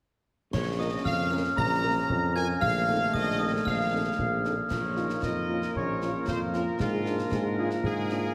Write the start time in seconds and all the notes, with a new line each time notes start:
0.53 A#1 F3 C#4 C#5 C#6, concert bass drum, snare, crash
0.79 C#4 F4 A#4 D#5 D#6
1.05 F2 F5 F6, concert bass drum, snare
1.31 C#4 F4 A#4 F5 F6
1.57 A#1 A#5 A#6, concert bass drum, snare
1.83 C#4 F4 A#4
2.09 F2, concert bass drum
2.35 C#4 F4 A#4 G#5 G#6, snare
2.60 A#1 D#3 A3 F5 F6, concert bass drum, snare
2.88 C4 D#4 A4
3.14 A#1 D#5 D#6, concert bass drum, snare
3.39 C4 D#4 A4 D#5 D#6
3.65 A#1 F5 F6, concert bass drum, snare
3.92 C4 D#4 A4
4.18 A#1, concert bass drum
4.44 C4 D#4 A4, snare
4.70 A#1 F3 A#3 F4 A#4 C#5, concert bass drum, snare, crash
4.96 A#3 C#4 D#4 F4, snare
5.10 snare
5.22 F2 D#5, concert bass drum, snare
5.49 A#3 C#4 F4
5.62 snare
5.74 A#1 C#4 C#5, concert bass drum
6.01 A#3 C#4 F4, snare
6.27 F2 F4 C5, concert bass drum, snare
6.53 A#3 C#4 F4 A#4, snare
6.79 G#2 F3 A#3 D4 F4 G#4 A#4, concert bass drum, snare
7.06 A#3 D4 F4, snare
7.19 snare
7.31 G#2 G#4, concert bass drum, snare
7.58 A#3 D4 F4 G#4
7.71 snare
7.83 G#2 G#4, concert bass drum
8.10 A#3 D4 F4, snare